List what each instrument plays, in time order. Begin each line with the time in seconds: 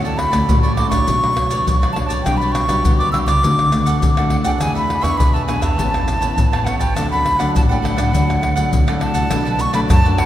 Already playing: upright bass D2, nylon-string guitar D3 A3 C#4 F#4
0.04 cavaquinho A4 C#5 D5, flute A5, pandeiro, maracas
0.18 flute B5, muted cavaquinho stroke, pandeiro, tamborim
0.32 upright bass D2, nylon-string guitar A3 C#4 F#4, cavaquinho A4 C#5 D5, pandeiro, tamborim, maracas, surdo
0.48 upright bass A1, nylon-string guitar A2 A3 C#4 F#4, cavaquinho F#4 A4 C#5 D5, pandeiro, maracas, surdo
0.62 cavaquinho A4 C#5 D5, flute C#6, pandeiro, maracas
0.76 nylon-string guitar A3 C#4 F#4, cavaquinho F#4 A4 C#5 D5, flute D6, pandeiro, tamborim
0.89 upright bass A1, nylon-string guitar D4 F#4 C#5, cavaquinho A4 C#5 D5, flute C#6, pandeiro, tamborim, maracas, surdo
1.06 upright bass B1, nylon-string guitar B3, cavaquinho D4 B4 C#5 D5, pandeiro, maracas, surdo
1.24 pandeiro, tamborim, maracas
1.36 nylon-string guitar D4 F#4 C#5, muted cavaquinho stroke, pandeiro, tamborim
1.50 cavaquinho B4 C#5 D5, pandeiro, maracas, surdo
1.66 upright bass B1, nylon-string guitar F#3, pandeiro, maracas, surdo
1.82 cavaquinho B4 C#5 D5, pandeiro, tamborim, maracas
1.93 cavaquinho D4 B4, flute A5, pandeiro, tamborim
1.97 nylon-string guitar D4 F#4 C#5, cavaquinho C#5 D5
2.06 upright bass B1, cavaquinho D5, flute A5
2.10 cavaquinho B4 C#5, pandeiro, maracas, surdo
2.23 upright bass B1, nylon-string guitar B2 G3 D4, cavaquinho F#4 G4 B4, flute G5, pandeiro, tamborim, maracas, surdo
2.27 nylon-string guitar F#4, cavaquinho D5
2.37 flute B5
2.41 cavaquinho G4 B4 D5, pandeiro, maracas
2.52 flute C#6, muted cavaquinho stroke, pandeiro, tamborim, maracas
2.68 upright bass B1, nylon-string guitar G3 D4 F#4, cavaquinho G4 B4 D5, pandeiro, tamborim, maracas, surdo
2.84 upright bass D2, nylon-string guitar B2, cavaquinho F#4 G4 B4 D5, pandeiro, maracas, surdo
2.98 cavaquinho B4 D5, flute D6, pandeiro, maracas
3.02 cavaquinho G4
3.12 nylon-string guitar G3 D4 F#4, cavaquinho F#4 G4 B4 D5, flute E6, pandeiro, tamborim
3.26 upright bass C#2, cavaquinho G4 B4 D5, flute D6, pandeiro, tamborim, maracas, surdo
3.43 upright bass D2, nylon-string guitar D3 A3 D4 F#4, cavaquinho D4 A4 D5 F#5, pandeiro, maracas, surdo
3.59 pandeiro, tamborim, maracas
3.72 nylon-string guitar A3 D4 F#4, muted cavaquinho stroke, pandeiro, tamborim, maracas
3.86 cavaquinho A4 D5 F#5, pandeiro, maracas, surdo
4.02 upright bass D2, nylon-string guitar A2, pandeiro, maracas, surdo
4.17 nylon-string guitar A3 D4 F#4, cavaquinho A4 D5 F#5, pandeiro, tamborim, maracas
4.30 cavaquinho D4 A4 D5 F#5, flute F#5, pandeiro, tamborim
4.44 upright bass D2, nylon-string guitar B3 D4 G#4, cavaquinho A4 D5 F#5, flute G5, pandeiro, maracas, surdo
4.59 upright bass E2, nylon-string guitar E3, cavaquinho D4 G#4 B4 E5, flute G#5 A5, pandeiro, tamborim, maracas, surdo
4.75 cavaquinho G#4 B4 E5, flute B5, pandeiro, maracas
4.89 muted cavaquinho stroke, pandeiro, tamborim
5.02 upright bass E2, nylon-string guitar B3 D4 G#4, cavaquinho G#4 B4 E5, flute C#6, pandeiro, tamborim, maracas, surdo
5.17 upright bass B1, nylon-string guitar B2, cavaquinho D4 G#4 B4 E5, flute B5, pandeiro, maracas, surdo
5.33 cavaquinho G#4 B4 E5, flute A5, pandeiro, maracas
5.46 nylon-string guitar B3 D4 G#4, cavaquinho D4 G#4 B4 E5, flute G#5, pandeiro, tamborim, maracas
5.61 upright bass E2, cavaquinho G#4 B4 E5, flute A5, pandeiro, tamborim, maracas, surdo
5.78 upright bass A1, nylon-string guitar A2 E3 B3 C#4, cavaquinho A4 B4 C#5 A5, pandeiro, maracas, surdo
5.94 nylon-string guitar E3 B3 C#4, pandeiro, tamborim, maracas, surdo
6.08 muted cavaquinho stroke, pandeiro, tamborim, maracas
6.21 nylon-string guitar E3 B3 C#4, cavaquinho B4 C#5 A5, pandeiro, maracas, surdo
6.37 upright bass A1, nylon-string guitar E3, pandeiro, maracas, surdo
6.53 cavaquinho B4 C#5 A5, pandeiro, tamborim, maracas
6.65 nylon-string guitar E3 B3 C#4, cavaquinho A4 B4 C#5 A5, flute F#5, pandeiro, tamborim, maracas
6.79 upright bass A1, cavaquinho B4 C#5 A5, flute G5, pandeiro, maracas, surdo
6.95 upright bass D2, nylon-string guitar D3 F#3 A3 D4, cavaquinho D4 A4 D5 F#5, flute A5, pandeiro, tamborim, maracas, surdo
7.11 cavaquinho A4 D5 F#5, flute B5, pandeiro, maracas
7.25 muted cavaquinho stroke, pandeiro, tamborim
7.39 upright bass D2, nylon-string guitar F#3 A3 D4, cavaquinho A4 D5 F#5, pandeiro, tamborim, maracas, surdo
7.55 upright bass A1, nylon-string guitar A2, cavaquinho D4 A4 D5 F#5, flute A5, pandeiro, maracas, surdo
7.69 nylon-string guitar F#3 A3 D4, cavaquinho A4 D5 F#5, flute G5, pandeiro, maracas
7.82 cavaquinho D4 A4 D5 F#5, flute F#5, pandeiro, tamborim
7.96 upright bass A1, nylon-string guitar F#3 A3 D4, cavaquinho A4 D5 F#5, pandeiro, tamborim, maracas, surdo
8.13 upright bass D2, nylon-string guitar D3 F#3 A3 D4, cavaquinho D4 A4 D5 F#5, pandeiro, maracas, surdo
8.30 pandeiro, tamborim, maracas
8.42 muted cavaquinho stroke, pandeiro, tamborim
8.56 nylon-string guitar F#3 A3 D4, cavaquinho A4 D5 F#5, pandeiro, maracas, surdo
8.72 upright bass D2, nylon-string guitar A2, pandeiro, maracas, surdo
8.87 nylon-string guitar F#3 A3 D4, cavaquinho A4 D5 F#5, pandeiro, tamborim, maracas
9.00 cavaquinho D4 A4 D5 F#5, flute A5, pandeiro, tamborim
9.14 upright bass C2, cavaquinho A4 D5 F#5, pandeiro, maracas, surdo
9.30 upright bass B1, nylon-string guitar B2 F#3 A3 D4, cavaquinho D4 A4 B4 D5, pandeiro, tamborim, maracas, surdo
9.45 cavaquinho A4 B4 D5, pandeiro, maracas
9.59 flute C#6, muted cavaquinho stroke, pandeiro, maracas
9.73 upright bass B1, nylon-string guitar F#3 A3 D4, cavaquinho A4 B4 D5, flute B5, pandeiro, tamborim, maracas
9.89 upright bass F#2, nylon-string guitar F#2, cavaquinho D4 A4 B4 D5, flute A5, pandeiro, tamborim, maracas, surdo
10.04 nylon-string guitar F#3 A3 D4, cavaquinho A4 B4 D5, pandeiro, maracas
10.18 cavaquinho D4 A4 B4 D5, flute F#5, pandeiro, tamborim